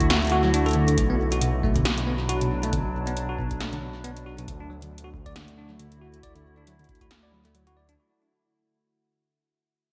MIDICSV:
0, 0, Header, 1, 5, 480
1, 0, Start_track
1, 0, Key_signature, 2, "major"
1, 0, Tempo, 437956
1, 1071, Time_signature, 4, 2, 24, 8
1, 10875, End_track
2, 0, Start_track
2, 0, Title_t, "Ambient pad"
2, 0, Program_c, 0, 92
2, 0, Note_on_c, 0, 50, 92
2, 0, Note_on_c, 0, 57, 88
2, 0, Note_on_c, 0, 64, 80
2, 0, Note_on_c, 0, 66, 82
2, 1070, Note_off_c, 0, 50, 0
2, 1071, Note_off_c, 0, 57, 0
2, 1071, Note_on_c, 0, 47, 91
2, 1498, Note_on_c, 0, 54, 79
2, 1755, Note_on_c, 0, 62, 82
2, 1975, Note_off_c, 0, 64, 0
2, 2618, Note_off_c, 0, 66, 0
2, 4911, Note_off_c, 0, 47, 0
2, 4911, Note_off_c, 0, 54, 0
2, 4912, Note_on_c, 0, 50, 71
2, 4960, Note_on_c, 0, 57, 90
2, 5223, Note_on_c, 0, 66, 69
2, 5453, Note_on_c, 0, 64, 82
2, 5576, Note_off_c, 0, 62, 0
2, 8751, Note_off_c, 0, 50, 0
2, 8751, Note_off_c, 0, 57, 0
2, 8751, Note_off_c, 0, 64, 0
2, 8751, Note_off_c, 0, 66, 0
2, 10875, End_track
3, 0, Start_track
3, 0, Title_t, "Tine electric piano"
3, 0, Program_c, 1, 4
3, 111, Note_on_c, 1, 66, 86
3, 171, Note_off_c, 1, 66, 0
3, 350, Note_on_c, 1, 66, 99
3, 450, Note_off_c, 1, 66, 0
3, 485, Note_on_c, 1, 54, 74
3, 532, Note_off_c, 1, 54, 0
3, 591, Note_on_c, 1, 62, 76
3, 718, Note_off_c, 1, 62, 0
3, 725, Note_on_c, 1, 69, 75
3, 825, Note_off_c, 1, 69, 0
3, 831, Note_on_c, 1, 50, 74
3, 931, Note_off_c, 1, 50, 0
3, 965, Note_on_c, 1, 50, 74
3, 1044, Note_off_c, 1, 50, 0
3, 1205, Note_on_c, 1, 59, 76
3, 1252, Note_off_c, 1, 59, 0
3, 1445, Note_on_c, 1, 66, 73
3, 1524, Note_off_c, 1, 66, 0
3, 1550, Note_on_c, 1, 47, 77
3, 1650, Note_off_c, 1, 47, 0
3, 1791, Note_on_c, 1, 57, 76
3, 1918, Note_off_c, 1, 57, 0
3, 1925, Note_on_c, 1, 50, 73
3, 1972, Note_off_c, 1, 50, 0
3, 2031, Note_on_c, 1, 47, 84
3, 2091, Note_off_c, 1, 47, 0
3, 2271, Note_on_c, 1, 59, 75
3, 2331, Note_off_c, 1, 59, 0
3, 2511, Note_on_c, 1, 66, 80
3, 2611, Note_off_c, 1, 66, 0
3, 2645, Note_on_c, 1, 47, 73
3, 2724, Note_off_c, 1, 47, 0
3, 2885, Note_on_c, 1, 57, 77
3, 2986, Note_off_c, 1, 57, 0
3, 2991, Note_on_c, 1, 50, 78
3, 3051, Note_off_c, 1, 50, 0
3, 3125, Note_on_c, 1, 47, 73
3, 3172, Note_off_c, 1, 47, 0
3, 3365, Note_on_c, 1, 59, 71
3, 3412, Note_off_c, 1, 59, 0
3, 3605, Note_on_c, 1, 66, 78
3, 3684, Note_off_c, 1, 66, 0
3, 3711, Note_on_c, 1, 47, 72
3, 3811, Note_off_c, 1, 47, 0
3, 3951, Note_on_c, 1, 57, 80
3, 4078, Note_off_c, 1, 57, 0
3, 4085, Note_on_c, 1, 50, 75
3, 4132, Note_off_c, 1, 50, 0
3, 4191, Note_on_c, 1, 47, 72
3, 4251, Note_off_c, 1, 47, 0
3, 4431, Note_on_c, 1, 59, 81
3, 4491, Note_off_c, 1, 59, 0
3, 4671, Note_on_c, 1, 66, 71
3, 4771, Note_off_c, 1, 66, 0
3, 4806, Note_on_c, 1, 47, 78
3, 4884, Note_off_c, 1, 47, 0
3, 5046, Note_on_c, 1, 62, 79
3, 5146, Note_off_c, 1, 62, 0
3, 5151, Note_on_c, 1, 54, 76
3, 5211, Note_off_c, 1, 54, 0
3, 5286, Note_on_c, 1, 50, 72
3, 5332, Note_off_c, 1, 50, 0
3, 5525, Note_on_c, 1, 66, 77
3, 5572, Note_off_c, 1, 66, 0
3, 5766, Note_on_c, 1, 74, 77
3, 5844, Note_off_c, 1, 74, 0
3, 5871, Note_on_c, 1, 50, 81
3, 5971, Note_off_c, 1, 50, 0
3, 6111, Note_on_c, 1, 62, 74
3, 6239, Note_off_c, 1, 62, 0
3, 6246, Note_on_c, 1, 54, 73
3, 6293, Note_off_c, 1, 54, 0
3, 6351, Note_on_c, 1, 50, 75
3, 6411, Note_off_c, 1, 50, 0
3, 6592, Note_on_c, 1, 66, 74
3, 6651, Note_off_c, 1, 66, 0
3, 6831, Note_on_c, 1, 74, 79
3, 6931, Note_off_c, 1, 74, 0
3, 6966, Note_on_c, 1, 50, 78
3, 7044, Note_off_c, 1, 50, 0
3, 7206, Note_on_c, 1, 62, 69
3, 7306, Note_off_c, 1, 62, 0
3, 7311, Note_on_c, 1, 54, 77
3, 7371, Note_off_c, 1, 54, 0
3, 7446, Note_on_c, 1, 50, 76
3, 7492, Note_off_c, 1, 50, 0
3, 7686, Note_on_c, 1, 66, 73
3, 7732, Note_off_c, 1, 66, 0
3, 7925, Note_on_c, 1, 74, 74
3, 8004, Note_off_c, 1, 74, 0
3, 8031, Note_on_c, 1, 54, 70
3, 8158, Note_off_c, 1, 54, 0
3, 8166, Note_on_c, 1, 57, 78
3, 8265, Note_off_c, 1, 57, 0
3, 8271, Note_on_c, 1, 54, 75
3, 8371, Note_off_c, 1, 54, 0
3, 8406, Note_on_c, 1, 66, 92
3, 8506, Note_off_c, 1, 66, 0
3, 8512, Note_on_c, 1, 74, 72
3, 8611, Note_off_c, 1, 74, 0
3, 8645, Note_on_c, 1, 62, 75
3, 8692, Note_off_c, 1, 62, 0
3, 10875, End_track
4, 0, Start_track
4, 0, Title_t, "Detuned saw bass"
4, 0, Program_c, 2, 39
4, 0, Note_on_c, 2, 38, 91
4, 1050, Note_off_c, 2, 38, 0
4, 1071, Note_on_c, 2, 35, 87
4, 4889, Note_off_c, 2, 35, 0
4, 4911, Note_on_c, 2, 38, 85
4, 8730, Note_off_c, 2, 38, 0
4, 10875, End_track
5, 0, Start_track
5, 0, Title_t, "Drums"
5, 5, Note_on_c, 9, 36, 113
5, 5, Note_on_c, 9, 42, 37
5, 111, Note_off_c, 9, 42, 0
5, 111, Note_on_c, 9, 38, 122
5, 111, Note_on_c, 9, 42, 77
5, 114, Note_off_c, 9, 36, 0
5, 220, Note_off_c, 9, 38, 0
5, 220, Note_off_c, 9, 42, 0
5, 245, Note_on_c, 9, 42, 16
5, 271, Note_off_c, 9, 42, 0
5, 271, Note_on_c, 9, 42, 20
5, 298, Note_off_c, 9, 42, 0
5, 298, Note_on_c, 9, 42, 24
5, 324, Note_off_c, 9, 42, 0
5, 324, Note_on_c, 9, 42, 28
5, 434, Note_off_c, 9, 42, 0
5, 590, Note_on_c, 9, 42, 73
5, 700, Note_off_c, 9, 42, 0
5, 725, Note_on_c, 9, 42, 17
5, 751, Note_off_c, 9, 42, 0
5, 751, Note_on_c, 9, 42, 21
5, 778, Note_off_c, 9, 42, 0
5, 778, Note_on_c, 9, 42, 26
5, 804, Note_off_c, 9, 42, 0
5, 804, Note_on_c, 9, 42, 30
5, 914, Note_off_c, 9, 42, 0
5, 965, Note_on_c, 9, 42, 51
5, 1070, Note_on_c, 9, 36, 115
5, 1071, Note_off_c, 9, 42, 0
5, 1071, Note_on_c, 9, 42, 71
5, 1180, Note_off_c, 9, 36, 0
5, 1180, Note_off_c, 9, 42, 0
5, 1445, Note_on_c, 9, 42, 50
5, 1550, Note_off_c, 9, 42, 0
5, 1550, Note_on_c, 9, 42, 76
5, 1660, Note_off_c, 9, 42, 0
5, 1791, Note_on_c, 9, 36, 120
5, 1900, Note_off_c, 9, 36, 0
5, 1925, Note_on_c, 9, 36, 96
5, 1925, Note_on_c, 9, 42, 35
5, 1951, Note_off_c, 9, 36, 0
5, 1951, Note_on_c, 9, 36, 82
5, 1995, Note_off_c, 9, 36, 0
5, 1995, Note_on_c, 9, 36, 69
5, 2030, Note_off_c, 9, 42, 0
5, 2030, Note_on_c, 9, 38, 116
5, 2030, Note_on_c, 9, 42, 78
5, 2105, Note_off_c, 9, 36, 0
5, 2140, Note_off_c, 9, 38, 0
5, 2140, Note_off_c, 9, 42, 0
5, 2165, Note_on_c, 9, 42, 35
5, 2275, Note_off_c, 9, 42, 0
5, 2511, Note_on_c, 9, 42, 73
5, 2621, Note_off_c, 9, 42, 0
5, 2645, Note_on_c, 9, 42, 37
5, 2755, Note_off_c, 9, 42, 0
5, 2885, Note_on_c, 9, 42, 48
5, 2991, Note_off_c, 9, 42, 0
5, 2991, Note_on_c, 9, 36, 107
5, 2991, Note_on_c, 9, 42, 71
5, 3100, Note_off_c, 9, 36, 0
5, 3100, Note_off_c, 9, 42, 0
5, 3365, Note_on_c, 9, 42, 47
5, 3471, Note_off_c, 9, 42, 0
5, 3471, Note_on_c, 9, 42, 71
5, 3580, Note_off_c, 9, 42, 0
5, 3711, Note_on_c, 9, 36, 110
5, 3820, Note_off_c, 9, 36, 0
5, 3845, Note_on_c, 9, 36, 99
5, 3845, Note_on_c, 9, 42, 37
5, 3951, Note_off_c, 9, 42, 0
5, 3951, Note_on_c, 9, 38, 109
5, 3951, Note_on_c, 9, 42, 75
5, 3955, Note_off_c, 9, 36, 0
5, 4061, Note_off_c, 9, 38, 0
5, 4061, Note_off_c, 9, 42, 0
5, 4086, Note_on_c, 9, 42, 35
5, 4195, Note_off_c, 9, 42, 0
5, 4431, Note_on_c, 9, 42, 72
5, 4541, Note_off_c, 9, 42, 0
5, 4565, Note_on_c, 9, 42, 35
5, 4675, Note_off_c, 9, 42, 0
5, 4806, Note_on_c, 9, 42, 45
5, 4911, Note_off_c, 9, 42, 0
5, 4911, Note_on_c, 9, 36, 109
5, 4911, Note_on_c, 9, 42, 73
5, 5020, Note_off_c, 9, 36, 0
5, 5021, Note_off_c, 9, 42, 0
5, 5286, Note_on_c, 9, 42, 48
5, 5395, Note_off_c, 9, 42, 0
5, 5459, Note_on_c, 9, 42, 79
5, 5568, Note_off_c, 9, 42, 0
5, 5631, Note_on_c, 9, 36, 115
5, 5740, Note_off_c, 9, 36, 0
5, 5765, Note_on_c, 9, 36, 100
5, 5766, Note_on_c, 9, 42, 36
5, 5872, Note_off_c, 9, 42, 0
5, 5872, Note_on_c, 9, 38, 116
5, 5872, Note_on_c, 9, 42, 75
5, 5875, Note_off_c, 9, 36, 0
5, 5981, Note_off_c, 9, 38, 0
5, 5981, Note_off_c, 9, 42, 0
5, 6006, Note_on_c, 9, 42, 36
5, 6116, Note_off_c, 9, 42, 0
5, 6351, Note_on_c, 9, 42, 74
5, 6460, Note_off_c, 9, 42, 0
5, 6486, Note_on_c, 9, 42, 38
5, 6595, Note_off_c, 9, 42, 0
5, 6726, Note_on_c, 9, 42, 49
5, 6831, Note_on_c, 9, 36, 109
5, 6832, Note_off_c, 9, 42, 0
5, 6832, Note_on_c, 9, 42, 78
5, 6940, Note_off_c, 9, 36, 0
5, 6941, Note_off_c, 9, 42, 0
5, 6966, Note_on_c, 9, 42, 34
5, 7075, Note_off_c, 9, 42, 0
5, 7311, Note_on_c, 9, 42, 78
5, 7421, Note_off_c, 9, 42, 0
5, 7445, Note_on_c, 9, 42, 16
5, 7499, Note_off_c, 9, 42, 0
5, 7499, Note_on_c, 9, 42, 20
5, 7551, Note_off_c, 9, 42, 0
5, 7551, Note_on_c, 9, 36, 112
5, 7551, Note_on_c, 9, 42, 26
5, 7618, Note_off_c, 9, 42, 0
5, 7618, Note_on_c, 9, 42, 31
5, 7660, Note_off_c, 9, 36, 0
5, 7685, Note_off_c, 9, 42, 0
5, 7685, Note_on_c, 9, 36, 104
5, 7685, Note_on_c, 9, 42, 37
5, 7790, Note_off_c, 9, 42, 0
5, 7790, Note_on_c, 9, 38, 115
5, 7790, Note_on_c, 9, 42, 78
5, 7795, Note_off_c, 9, 36, 0
5, 7900, Note_off_c, 9, 38, 0
5, 7900, Note_off_c, 9, 42, 0
5, 8165, Note_on_c, 9, 42, 37
5, 8271, Note_off_c, 9, 42, 0
5, 8271, Note_on_c, 9, 42, 72
5, 8381, Note_off_c, 9, 42, 0
5, 8406, Note_on_c, 9, 42, 38
5, 8515, Note_off_c, 9, 42, 0
5, 8645, Note_on_c, 9, 42, 50
5, 8755, Note_off_c, 9, 42, 0
5, 10875, End_track
0, 0, End_of_file